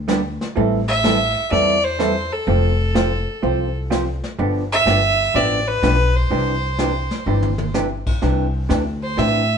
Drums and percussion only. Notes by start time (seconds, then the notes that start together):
0.08 snare, hi-hat pedal
0.41 snare
0.56 brush sweep
1.04 snare, hi-hat pedal
1.52 brush sweep
2.00 snare, hi-hat pedal
2.47 brush sweep
2.95 snare, hi-hat pedal
3.43 brush sweep
3.92 snare, hi-hat pedal
4.24 snare
4.39 brush sweep
4.87 snare, hi-hat pedal
5.35 brush sweep
5.83 snare, hi-hat pedal
6.31 brush sweep
6.79 snare, hi-hat pedal
7.11 snare
7.42 mid tom
7.58 mid tom
7.74 snare, hi-hat pedal
8.06 kick, crash
8.22 brush sweep, snare
8.70 snare, hi-hat pedal
9.18 brush sweep, snare